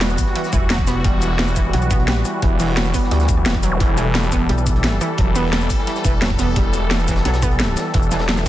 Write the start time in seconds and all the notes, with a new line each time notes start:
Already playing: E1 E3 G3 F#4
0.01 G3, snare, closed hi-hat
0.09 cross-stick, snare, shaker
0.17 kick, closed hi-hat, open hi-hat, shaker
0.26 snare
0.35 E3, closed hi-hat
0.44 snare, shaker
0.53 E1 E3, kick, closed hi-hat, shaker
0.70 F#3, snare, closed hi-hat
0.78 kick, closed hi-hat
0.87 B3, snare, closed hi-hat, shaker
1.04 E1 G3, kick, closed hi-hat
1.22 closed hi-hat, shaker
1.39 E3, snare, closed hi-hat
1.47 cross-stick, snare, shaker
1.56 E1 E3, kick, snare, closed hi-hat, shaker
1.73 B1 F#3, closed hi-hat
1.82 cross-stick, shaker
1.91 B3, kick, closed hi-hat, shaker
2.00 closed hi-hat
2.08 G3, snare, closed hi-hat
2.17 snare
2.25 cross-stick, closed hi-hat, shaker
2.42 E1 E3, kick, closed hi-hat
2.60 E3, closed hi-hat, open hi-hat, shaker
2.68 cross-stick
2.76 F#3, snare, closed hi-hat
2.86 cross-stick, snare, shaker
2.94 B3, kick, closed hi-hat, open hi-hat, shaker
3.03 snare
3.11 D2 G3, closed hi-hat
3.20 snare, shaker
3.28 kick, closed hi-hat, shaker
3.37 cross-stick
3.46 E1 E3, snare, closed hi-hat
3.54 kick, cross-stick, closed hi-hat
3.63 F#3, closed hi-hat, shaker
3.72 zap
3.80 E1 E3 A4, kick, closed hi-hat
3.98 E3, closed hi-hat, shaker
4.15 F#3, snare, closed hi-hat
4.23 cross-stick, snare, shaker
4.32 E1 B3, kick, snare, closed hi-hat, shaker
4.49 B1 G3, closed hi-hat
4.58 cross-stick, shaker
4.67 kick, closed hi-hat, shaker
4.76 closed hi-hat
4.83 E3, snare, closed hi-hat
4.93 snare
5.01 E3, cross-stick, closed hi-hat, shaker
5.18 E1 F#3, kick, closed hi-hat
5.35 B3, closed hi-hat, open hi-hat, shaker
5.44 cross-stick
5.53 G3, snare, closed hi-hat
5.61 cross-stick, snare, shaker
5.70 kick, closed hi-hat, open hi-hat, shaker
5.78 snare
5.87 E3, closed hi-hat
5.96 snare, shaker
6.05 E1 E3, kick, closed hi-hat, shaker
6.22 F#3, snare, closed hi-hat
6.30 kick, closed hi-hat
6.39 B3, snare, closed hi-hat, shaker
6.56 E1 G3, kick, closed hi-hat
6.73 closed hi-hat, shaker
6.90 E3, snare, closed hi-hat
6.99 cross-stick, snare, shaker
7.08 E1 E3, kick, snare, closed hi-hat, shaker
7.16 snare, closed hi-hat
7.25 B1 F#3, snare, closed hi-hat
7.34 cross-stick, snare, closed hi-hat, shaker
7.42 B3, kick, closed hi-hat, shaker
7.51 closed hi-hat
7.59 G3, snare, closed hi-hat
7.69 snare
7.76 cross-stick, snare, closed hi-hat, shaker
7.94 E1 E3, kick, closed hi-hat
8.03 shaker
8.11 E3, snare, closed hi-hat, shaker
8.19 cross-stick, snare, closed hi-hat
8.28 F#3, snare, closed hi-hat
8.37 cross-stick, snare, shaker